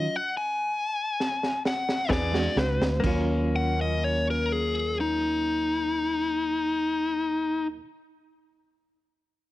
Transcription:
Already playing: F#3 C#4 F4 D#5
0.16 F#5
0.37 G#5
1.20 snare
1.43 snare
1.65 F#5, snare
1.89 snare
2.09 E2 E3 B3 D4 G#4 B4, kick, snare
2.13 D5
2.32 G#3 D4 F#4, snare
2.56 C#2, snare
2.80 D2, snare
3.00 D#2 F#3 A#3 C#4, kick
3.04 C#4 F4, crash
3.56 F#5
3.81 D#5
4.04 C#5
4.30 A#4
4.52 G#4
5.00 D#4

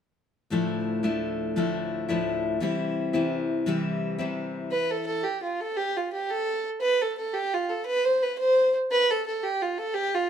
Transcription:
0.50 D2 A2 F3 A3 D4 E4
1.03 D2 A2 F3 A3 D4 E4
1.56 D2 A2 F3 A3 D4 E4
2.09 D2 A2 F3 A3 D4 E4
2.60 C3 E3 G3 C4 E4
3.13 C3 E3 G3 C4 E4
3.66 C3 E3 G3 C4 E4
4.18 C3 E3 G3 C4 E4
4.71 B4
4.91 A4
5.07 A4
5.23 G4
5.43 F4
5.61 A4
5.77 G4
5.97 F4
6.13 G4
6.30 A4
6.81 B4
7.01 A4
7.18 A4
7.34 G4
7.53 F4
7.69 A4
7.86 B4
8.05 C5
8.22 B4
8.38 C5
8.91 B4
9.10 A4
9.26 A4
9.43 G4
9.62 F4
9.78 A4
9.94 G4
10.14 F4

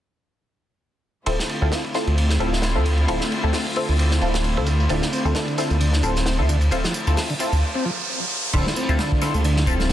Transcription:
1.26 D1 D3 A3 C4 E4 F4 A4, kick, ride
1.39 snare
1.49 ride
1.62 D2 C4 E4 F4 A4
1.72 snare, ride
1.85 kick
1.94 C4 E4 F4 A4, snare, ride
2.07 D2, ride
2.18 ride
2.30 snare
2.39 D1 C4 E4 F4 A4, kick, ride
2.53 snare
2.62 snare, ride
2.75 D2 C4 E4 F4 A4
2.85 kick, ride
2.98 ride
3.08 D1 C4 E4 F4 A4, kick, ride
3.21 snare
3.31 ride, tambourine
3.43 D2 C4 E4 F4 A4, tambourine
3.53 snare, open hi-hat
3.67 kick
3.76 C4 E4 F4 A4, kick, ride, tambourine
3.89 D2, ride, tambourine
3.99 ride, tambourine
4.11 snare
4.22 D1 C4 E4 F4 A4, ride, tambourine
4.34 snare
4.44 ride, tambourine
4.57 D2 C4 E4 F4 A4, kick
4.66 kick, ride, tambourine
4.80 tambourine
4.89 D1 D3 C4 E4 F4 A4, kick, ride, tambourine, riser
5.02 D3, snare, tambourine
5.12 C4, ride, tambourine
5.25 D2 C4 E4 F4 A4, tambourine
5.35 D3, snare, ride, tambourine
5.48 kick, tambourine
5.58 C4 E4 F4 A4, snare, ride, tambourine
5.70 D2 A3, ride, tambourine
5.80 D3, ride, tambourine
5.93 snare
6.03 D1 C4 E4 F4 A4, kick, ride, tambourine
6.16 snare, tambourine
6.26 snare, ride, tambourine
6.39 D2 D3 C4 E4 F4 A4
6.49 D3, kick, ride, tambourine
6.61 ride, tambourine
6.71 D1 C4 E4 F4 A4, kick, ride, tambourine
6.84 F3, snare, tambourine
6.94 ride, tambourine
7.07 D2 C4 E4 F4 A4, tambourine
7.17 snare, open hi-hat, tambourine
7.30 D3, kick, tambourine
7.39 C4 E4 F4 A4, kick, ride, tambourine
7.52 D2, ride, tambourine
7.75 C4
7.85 F3
8.53 D1 D3 A3 C4 E4 F4 A4, kick, crash, ride, tambourine
8.66 D3, snare
8.76 C4, ride, tambourine
8.89 D2 C4 E4 F4 A4, tambourine
8.99 D3, snare, ride, tambourine
9.12 kick
9.22 C4 E4 F4 A4, snare, ride, tambourine
9.34 D2 A3, ride, tambourine
9.44 D3, ride, tambourine
9.56 snare
9.66 D1 C4 E4 F4 A4, kick, ride, tambourine
9.80 snare, tambourine
9.90 snare

